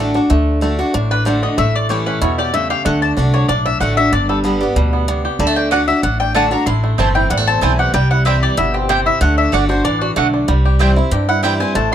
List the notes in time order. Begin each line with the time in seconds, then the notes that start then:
Already playing: A1 A2 D3 D4 A4
0.00 A3 D4 F#4
0.14 D4 F#4
0.30 D2 D3 A3
0.61 D3 A3 D4 F#4
0.79 D4 F#4
0.94 A1 A2 D4
1.11 D4 B4
1.25 D3 A3 D4 F#4 C5
1.43 D4 D#5
1.58 A1 A2 A3 E5
1.76 D5
1.89 E3 A3 C#4 E4 G4 C#5
2.06 C#4 B4
2.22 E2 B2 E4 C#5
2.38 G4 D5
2.54 C#3 A3 E5
2.70 G4 F5
2.85 D2 D3 A3 F#5
3.02 D4 A5
3.17 C2 D3 A3 D4 F#4
3.34 D4 C#5
3.48 B1 A2 D4 D5
3.65 D4 E5
3.80 A1 D3 A3 D4 F#4 F#5
3.97 D4 F#4 E5
4.12 G1 G2 D4 D5
4.29 G3 A4
4.44 D3 G3 B3 G4
4.61 B3 D4 G4
4.76 D2 B2 G3
4.93 B3
5.08 C3 D4
5.25 G4
5.39 D2 D3 G3 A5
5.47 A3
5.56 D4 G5
5.71 D3 A3 D4 F#4 D5 F#5
5.88 D4 F#4 E5
6.03 A1 A2 D4 F#5
6.20 D4 G5
6.34 D3 A3 D4 F#4 D5 F#5 A5
6.51 D4 F#4 A#5
6.66 A1 A2 E4 C6
6.84 A3
6.98 G1 E3 A3 C4 E4 C5 A5
7.15 E4 G5
7.30 A1 E2 G3 F#5
7.37 A3
7.47 C4 A5
7.61 B1 E3 A3 C4 E4 C5 G#5 A5
7.79 G4 F#5
7.94 C2 C3 G3 G5
8.11 E4 F#5
8.25 E3 G3 C4 E4 C5 E5 G5
8.43 G4 D5
8.57 G1 B2 E4 E5
8.74 C4 G4
8.89 C3 C4 E4 G4 C5 G5
9.06 E4 E5
9.21 D2 D3 A3 F#5
9.38 D4 E5
9.52 G1 D3 A3 D4 F#4 D5 F#5
9.69 D4 F#4 C5
9.85 A1 E3 D4 D5
10.01 D4 F#4
10.16 B1 D3 A3 F#4 D5 F#5
10.34 D4
10.48 C2 C3 G3
10.65 G4
10.79 E3 G3 C4 E4 C5 G5
10.96 C4 E4
11.11 G2 G4
11.29 E4 F#5
11.43 E3 G3 C4 E4 C5 G5
11.60 C4 E4 G#5
11.75 A1 A2 A3 A5
11.92 E4